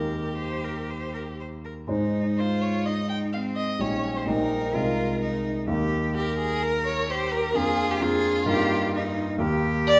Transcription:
Already playing: D#2 A#3 D#4 G4 A#4
0.38 C5
0.64 A#4
0.90 C5
1.14 A#4
1.40 C5
1.65 A#4
1.87 G#2 G#3 D#4 C5
2.38 F4 C5
2.62 C#5
2.86 D#4 D#5
3.09 G5
3.33 C4 F5
3.56 D#5
3.79 A#1 G3 C#4 D#4 C#5 D#5
4.17 C5
4.26 A#1 G3 D#4 A#4 D#5
4.72 C2 G#3 D#4 F4 D#5
5.22 D#4
5.67 D#2 A#3 D#4 G4 A#4
6.15 G4 A#4
6.39 G#4
6.63 A#4
6.86 C#5
7.10 G4 C5
7.32 A#4
7.54 F2 A#3 D4 F4 G#4 A#4
7.91 G4
8.00 F2 A#3 D4 F4 G#4 A#4
8.46 G2 A#3 D#4 G4 A#4
8.95 D#4
9.38 D#2 A#3 G4 A#4
9.87 D5

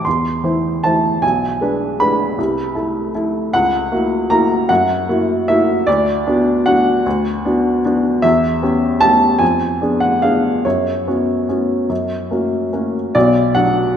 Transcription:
0.05 E2 C6
0.44 E3 E4 C5
0.84 E3 E4 C5 A5
1.22 B1 G#5
1.61 G#3 D4 B4
2.00 G#3 D4 B4 B5
2.38 C2
2.75 A3 E4 A4
3.15 A3 E4 A4
3.53 C#2 F#5
3.92 A#3 E4 F#4
4.30 A#3 E4 F#4 A#5
4.69 F#2 F#5
5.09 A#3 E4 F#4
5.48 A#3 E4 F#4 E5
5.87 D2 D5
6.27 B3 D4 F#4
6.66 B3 D4 F#4 F#5
7.06 D2
7.45 B3 D4 F#4
7.85 B3 D4 F#4
8.22 E2 E5
8.62 B3 C#4 G4
9.01 B3 C#4 G4 A5
9.39 F2 G#5
9.82 B3 D4 G#4
10.00 F#5
10.22 B3 D4 G#4 F5
10.65 F#2 C#5
11.07 B3 C#4 F#4
11.49 B3 C#4 F#4
11.89 F#2
12.31 A#3 C#4 F#4
12.73 A#3 C#4 F#4
13.15 B1 B2 D5
13.55 F#3 D4 F#4 F#5

